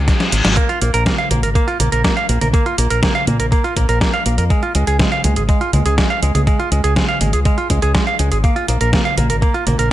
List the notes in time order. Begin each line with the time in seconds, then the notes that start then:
Already playing: reverse cymbal
0.08 kick, snare, closed hi-hat
0.20 snare, closed hi-hat
0.32 G#1, closed hi-hat
0.45 G#1, snare, closed hi-hat
0.57 A#3, kick, closed hi-hat
0.69 F4, closed hi-hat
0.81 A#1 A#3, closed hi-hat
0.94 A#1 A#4, closed hi-hat
1.06 A#3, kick, snare, closed hi-hat, high conga
1.18 F5, closed hi-hat
1.31 A#1 A#3, closed hi-hat, high conga
1.43 G#1 A#4, closed hi-hat
1.55 A#3, kick, closed hi-hat
1.68 F4, closed hi-hat
1.80 A#1 A#3, closed hi-hat, high conga
1.92 A#1 A#4, closed hi-hat
2.04 A#3, kick, snare, closed hi-hat
2.17 F5, closed hi-hat
2.29 A#1 A#3, closed hi-hat
2.41 A#1 A#4, closed hi-hat, high conga
2.54 A#3, kick, closed hi-hat
2.66 F4, closed hi-hat
2.78 A#1 A#3, closed hi-hat
2.90 A#1 A#4, closed hi-hat
3.03 A#3, kick, snare, closed hi-hat, high conga
3.15 F5, closed hi-hat
3.27 A#2 A#3, closed hi-hat, high conga
3.40 A#1 A#4, closed hi-hat
3.52 A#3, kick, closed hi-hat
3.64 F4, closed hi-hat
3.77 A#1 A#3, kick, closed hi-hat
3.89 A#1 A#4, closed hi-hat
4.01 A#3, kick, snare, closed hi-hat
4.14 F5, closed hi-hat
4.26 A#1 A#3, closed hi-hat
4.38 F2 A#4, closed hi-hat
4.50 G#3, kick, closed hi-hat
4.63 F4, closed hi-hat
4.75 C#2 G#3, closed hi-hat
4.87 C#2 G#4, closed hi-hat
5.00 G#3, kick, snare, closed hi-hat, high conga
5.12 F5, closed hi-hat
5.24 C#2 G#3, closed hi-hat, high conga
5.36 G#1 G#4, closed hi-hat
5.49 G#3, kick, closed hi-hat
5.61 F4, closed hi-hat
5.73 C#2 G#3, closed hi-hat, high conga
5.85 C#2 G#4, closed hi-hat
5.98 G#3, kick, snare, closed hi-hat
6.10 F5, closed hi-hat
6.22 C#2 G#3, closed hi-hat
6.35 C#2 G#4, closed hi-hat, high conga
6.47 G#3, kick, closed hi-hat
6.59 F4, closed hi-hat
6.72 C#2 G#3, closed hi-hat
6.84 C#2 G#4, closed hi-hat
6.96 G#3, kick, snare, closed hi-hat, high conga
7.09 F5, closed hi-hat
7.21 G#1 G#3, closed hi-hat, high conga
7.33 C#2 G#4, closed hi-hat
7.45 G#3, kick, closed hi-hat
7.58 F4, closed hi-hat
7.70 C#2 G#3, kick, closed hi-hat
7.82 C#2 G#4, closed hi-hat
7.95 G#3, kick, snare, closed hi-hat
8.07 F5, closed hi-hat
8.19 C#2 G#3, closed hi-hat
8.32 G#1 G#4, closed hi-hat
8.44 A#3, kick, closed hi-hat
8.56 F4, closed hi-hat
8.68 A#1 A#3, closed hi-hat
8.81 A#1 A#4, closed hi-hat
8.93 A#3, kick, snare, closed hi-hat, high conga
9.05 F5, closed hi-hat
9.17 A#1 A#3, closed hi-hat, high conga
9.30 G#1 A#4, closed hi-hat
9.42 A#3, kick, closed hi-hat
9.54 F4, closed hi-hat
9.67 A#1 A#3, closed hi-hat, high conga
9.79 A#1 A#4, closed hi-hat